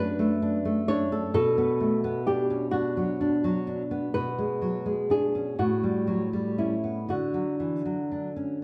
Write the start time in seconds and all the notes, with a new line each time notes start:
Already playing: F#2 D4 B4
0.19 A3
0.42 D4
0.65 A3
0.88 D4 C#5
1.12 A4
1.34 B2 A4
1.58 B3
1.80 A3
2.04 B3
2.27 D4 G4
2.50 C#4
2.71 D4 F#4
2.97 F#3
3.21 D4
3.44 F#3
3.67 D4
3.91 B3
4.14 B2 B4
4.38 G#3
4.62 F#3
4.86 G#3
5.10 D4 G#4
5.35 C#4
5.59 A2 F#4
5.83 G3
6.07 F#3
6.33 G3
6.58 C#4 E4
6.84 B3
7.09 D3 F#4
7.34 F#3
7.60 E3
7.86 F#3
8.12 D4
8.36 C#4